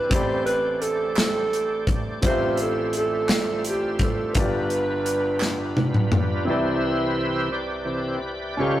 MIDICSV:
0, 0, Header, 1, 5, 480
1, 0, Start_track
1, 0, Key_signature, 0, "major"
1, 0, Tempo, 707798
1, 73, Time_signature, 6, 3, 24, 8
1, 5968, End_track
2, 0, Start_track
2, 0, Title_t, "Alto saxophone"
2, 0, Program_c, 0, 65
2, 0, Note_on_c, 0, 71, 91
2, 89, Note_on_c, 0, 72, 88
2, 99, Note_off_c, 0, 71, 0
2, 307, Note_off_c, 0, 72, 0
2, 311, Note_on_c, 0, 71, 87
2, 554, Note_on_c, 0, 69, 87
2, 565, Note_off_c, 0, 71, 0
2, 794, Note_off_c, 0, 69, 0
2, 800, Note_on_c, 0, 69, 89
2, 1308, Note_off_c, 0, 69, 0
2, 1530, Note_on_c, 0, 72, 90
2, 1746, Note_off_c, 0, 72, 0
2, 1772, Note_on_c, 0, 69, 78
2, 1987, Note_off_c, 0, 69, 0
2, 2016, Note_on_c, 0, 69, 89
2, 2457, Note_off_c, 0, 69, 0
2, 2501, Note_on_c, 0, 67, 69
2, 2711, Note_off_c, 0, 67, 0
2, 2734, Note_on_c, 0, 69, 68
2, 2973, Note_on_c, 0, 71, 88
2, 2983, Note_off_c, 0, 69, 0
2, 3922, Note_off_c, 0, 71, 0
2, 5968, End_track
3, 0, Start_track
3, 0, Title_t, "Grand piano"
3, 0, Program_c, 1, 0
3, 0, Control_c, 1, 64, 127
3, 0, Note_on_c, 1, 74, 63
3, 0, Note_on_c, 1, 83, 50
3, 66, Note_on_c, 1, 60, 58
3, 79, Note_on_c, 1, 67, 50
3, 81, Note_on_c, 1, 33, 56
3, 83, Note_off_c, 1, 74, 0
3, 83, Control_c, 1, 64, 0
3, 84, Note_on_c, 1, 45, 55
3, 85, Note_off_c, 1, 83, 0
3, 88, Note_on_c, 1, 83, 50
3, 100, Note_on_c, 1, 74, 63
3, 208, Control_c, 1, 64, 127
3, 1482, Note_off_c, 1, 60, 0
3, 1489, Note_off_c, 1, 67, 0
3, 1490, Note_off_c, 1, 33, 0
3, 1491, Note_off_c, 1, 45, 0
3, 1493, Note_off_c, 1, 83, 0
3, 1499, Note_off_c, 1, 74, 0
3, 1504, Note_on_c, 1, 60, 57
3, 1516, Note_on_c, 1, 65, 57
3, 1517, Note_on_c, 1, 45, 58
3, 1519, Note_on_c, 1, 33, 59
3, 1523, Control_c, 1, 64, 0
3, 1524, Note_on_c, 1, 67, 53
3, 1540, Note_on_c, 1, 76, 67
3, 1639, Control_c, 1, 64, 127
3, 2921, Note_off_c, 1, 60, 0
3, 2927, Note_off_c, 1, 45, 0
3, 2927, Note_off_c, 1, 65, 0
3, 2928, Note_off_c, 1, 33, 0
3, 2931, Note_off_c, 1, 67, 0
3, 2939, Note_off_c, 1, 76, 0
3, 2940, Note_on_c, 1, 59, 57
3, 2951, Note_on_c, 1, 65, 52
3, 2954, Note_on_c, 1, 31, 59
3, 2959, Note_on_c, 1, 43, 60
3, 2962, Control_c, 1, 64, 0
3, 2963, Note_on_c, 1, 67, 56
3, 2976, Note_on_c, 1, 74, 64
3, 3073, Control_c, 1, 64, 127
3, 4358, Note_off_c, 1, 59, 0
3, 4364, Note_off_c, 1, 65, 0
3, 4365, Note_off_c, 1, 31, 0
3, 4368, Note_off_c, 1, 43, 0
3, 4370, Note_off_c, 1, 67, 0
3, 4375, Note_on_c, 1, 60, 63
3, 4376, Note_off_c, 1, 74, 0
3, 4383, Note_on_c, 1, 64, 53
3, 4389, Note_on_c, 1, 48, 55
3, 4390, Note_on_c, 1, 36, 61
3, 4395, Note_on_c, 1, 71, 55
3, 4402, Control_c, 1, 64, 0
3, 4406, Note_on_c, 1, 74, 64
3, 4533, Control_c, 1, 64, 127
3, 5795, Note_off_c, 1, 60, 0
3, 5799, Note_off_c, 1, 64, 0
3, 5802, Note_off_c, 1, 36, 0
3, 5802, Note_off_c, 1, 48, 0
3, 5805, Note_off_c, 1, 71, 0
3, 5811, Note_off_c, 1, 74, 0
3, 5813, Note_on_c, 1, 61, 58
3, 5828, Note_on_c, 1, 67, 54
3, 5830, Note_on_c, 1, 37, 60
3, 5830, Note_on_c, 1, 49, 59
3, 5837, Note_on_c, 1, 69, 55
3, 5838, Control_c, 1, 64, 0
3, 5843, Note_on_c, 1, 77, 69
3, 5968, Note_off_c, 1, 37, 0
3, 5968, Note_off_c, 1, 49, 0
3, 5968, Note_off_c, 1, 61, 0
3, 5968, Note_off_c, 1, 67, 0
3, 5968, Note_off_c, 1, 69, 0
3, 5968, Note_off_c, 1, 77, 0
3, 5968, End_track
4, 0, Start_track
4, 0, Title_t, "Tonewheel organ"
4, 0, Program_c, 2, 16
4, 0, Note_on_c, 2, 60, 54
4, 0, Note_on_c, 2, 62, 52
4, 0, Note_on_c, 2, 74, 64
4, 76, Note_on_c, 2, 57, 58
4, 81, Note_on_c, 2, 67, 54
4, 1485, Note_off_c, 2, 60, 0
4, 1486, Note_off_c, 2, 74, 0
4, 1500, Note_off_c, 2, 57, 0
4, 1503, Note_off_c, 2, 67, 0
4, 1514, Note_on_c, 2, 45, 58
4, 1514, Note_on_c, 2, 72, 67
4, 1516, Note_on_c, 2, 76, 56
4, 1517, Note_on_c, 2, 65, 54
4, 1521, Note_on_c, 2, 55, 58
4, 2939, Note_off_c, 2, 45, 0
4, 2939, Note_off_c, 2, 72, 0
4, 2940, Note_off_c, 2, 76, 0
4, 2942, Note_off_c, 2, 55, 0
4, 2945, Note_on_c, 2, 59, 53
4, 2950, Note_on_c, 2, 55, 60
4, 2950, Note_on_c, 2, 71, 70
4, 3666, Note_off_c, 2, 62, 0
4, 3669, Note_off_c, 2, 71, 0
4, 3673, Note_off_c, 2, 65, 0
4, 3674, Note_on_c, 2, 62, 49
4, 3677, Note_on_c, 2, 71, 66
4, 3681, Note_on_c, 2, 65, 50
4, 4365, Note_off_c, 2, 62, 0
4, 4369, Note_off_c, 2, 65, 0
4, 4374, Note_off_c, 2, 59, 0
4, 4376, Note_off_c, 2, 55, 0
4, 4384, Note_off_c, 2, 71, 0
4, 4385, Note_on_c, 2, 48, 54
4, 4388, Note_on_c, 2, 67, 64
4, 4391, Note_on_c, 2, 52, 47
4, 4392, Note_on_c, 2, 71, 54
4, 4393, Note_on_c, 2, 64, 62
4, 4397, Note_on_c, 2, 72, 87
4, 5081, Note_off_c, 2, 48, 0
4, 5082, Note_off_c, 2, 67, 0
4, 5084, Note_off_c, 2, 52, 0
4, 5084, Note_off_c, 2, 64, 0
4, 5084, Note_off_c, 2, 71, 0
4, 5100, Note_on_c, 2, 67, 54
4, 5101, Note_on_c, 2, 74, 74
4, 5103, Note_on_c, 2, 71, 55
4, 5135, Note_off_c, 2, 72, 0
4, 5323, Note_on_c, 2, 52, 37
4, 5329, Note_on_c, 2, 60, 47
4, 5331, Note_on_c, 2, 48, 43
4, 5552, Note_off_c, 2, 52, 0
4, 5555, Note_off_c, 2, 60, 0
4, 5556, Note_off_c, 2, 48, 0
4, 5798, Note_off_c, 2, 67, 0
4, 5799, Note_off_c, 2, 71, 0
4, 5819, Note_on_c, 2, 49, 50
4, 5825, Note_on_c, 2, 65, 66
4, 5826, Note_on_c, 2, 61, 56
4, 5831, Note_on_c, 2, 73, 92
4, 5832, Note_on_c, 2, 55, 45
4, 5835, Note_on_c, 2, 67, 63
4, 5847, Note_off_c, 2, 74, 0
4, 5968, Note_off_c, 2, 49, 0
4, 5968, Note_off_c, 2, 55, 0
4, 5968, Note_off_c, 2, 61, 0
4, 5968, Note_off_c, 2, 65, 0
4, 5968, Note_off_c, 2, 67, 0
4, 5968, Note_off_c, 2, 73, 0
4, 5968, End_track
5, 0, Start_track
5, 0, Title_t, "Drums"
5, 74, Note_on_c, 9, 36, 102
5, 75, Note_on_c, 9, 42, 80
5, 142, Note_off_c, 9, 36, 0
5, 142, Note_off_c, 9, 42, 0
5, 315, Note_on_c, 9, 42, 41
5, 383, Note_off_c, 9, 42, 0
5, 554, Note_on_c, 9, 42, 53
5, 622, Note_off_c, 9, 42, 0
5, 790, Note_on_c, 9, 39, 74
5, 799, Note_on_c, 9, 38, 91
5, 799, Note_on_c, 9, 42, 66
5, 858, Note_off_c, 9, 39, 0
5, 867, Note_off_c, 9, 38, 0
5, 867, Note_off_c, 9, 42, 0
5, 1039, Note_on_c, 9, 42, 50
5, 1107, Note_off_c, 9, 42, 0
5, 1269, Note_on_c, 9, 36, 83
5, 1271, Note_on_c, 9, 42, 41
5, 1337, Note_off_c, 9, 36, 0
5, 1338, Note_off_c, 9, 42, 0
5, 1508, Note_on_c, 9, 42, 76
5, 1512, Note_on_c, 9, 36, 104
5, 1576, Note_off_c, 9, 42, 0
5, 1580, Note_off_c, 9, 36, 0
5, 1746, Note_on_c, 9, 42, 46
5, 1813, Note_off_c, 9, 42, 0
5, 1987, Note_on_c, 9, 42, 51
5, 2055, Note_off_c, 9, 42, 0
5, 2231, Note_on_c, 9, 39, 74
5, 2233, Note_on_c, 9, 38, 95
5, 2233, Note_on_c, 9, 42, 62
5, 2298, Note_off_c, 9, 39, 0
5, 2300, Note_off_c, 9, 42, 0
5, 2301, Note_off_c, 9, 38, 0
5, 2471, Note_on_c, 9, 42, 50
5, 2539, Note_off_c, 9, 42, 0
5, 2706, Note_on_c, 9, 42, 40
5, 2709, Note_on_c, 9, 36, 76
5, 2773, Note_off_c, 9, 42, 0
5, 2776, Note_off_c, 9, 36, 0
5, 2947, Note_on_c, 9, 42, 77
5, 2952, Note_on_c, 9, 36, 98
5, 3015, Note_off_c, 9, 42, 0
5, 3020, Note_off_c, 9, 36, 0
5, 3189, Note_on_c, 9, 42, 43
5, 3256, Note_off_c, 9, 42, 0
5, 3430, Note_on_c, 9, 42, 50
5, 3498, Note_off_c, 9, 42, 0
5, 3664, Note_on_c, 9, 39, 74
5, 3676, Note_on_c, 9, 38, 44
5, 3732, Note_off_c, 9, 39, 0
5, 3744, Note_off_c, 9, 38, 0
5, 3911, Note_on_c, 9, 48, 61
5, 3979, Note_off_c, 9, 48, 0
5, 4031, Note_on_c, 9, 47, 56
5, 4099, Note_off_c, 9, 47, 0
5, 4148, Note_on_c, 9, 45, 84
5, 4216, Note_off_c, 9, 45, 0
5, 5968, End_track
0, 0, End_of_file